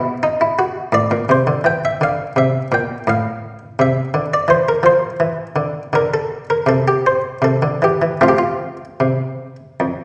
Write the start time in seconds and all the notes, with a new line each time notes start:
Already playing: B2 E4
0.23 D#4
0.41 E4
0.59 F#4
0.92 A2 D5
1.11 A#2
1.29 C3 C5
1.47 D3
1.64 E3 G5
1.85 E5
2.01 D3 F5
2.36 C3 E5
2.72 A#2 G5
3.07 A2 F5
3.79 C3 E5
4.14 D3
4.34 D5
4.48 E3 C5
4.68 A#4
4.83 F3 C5
5.20 E3
5.56 D3
5.93 D3 A#4
6.14 A4
6.50 A#4
6.66 C3 A4
6.88 G4
7.06 C5
7.42 C3 A4
7.62 D3
7.82 E3 G4
8.02 E3
8.21 F3 A3 C4 F4
8.28 G4
8.38 F4
9.00 C3
9.80 F2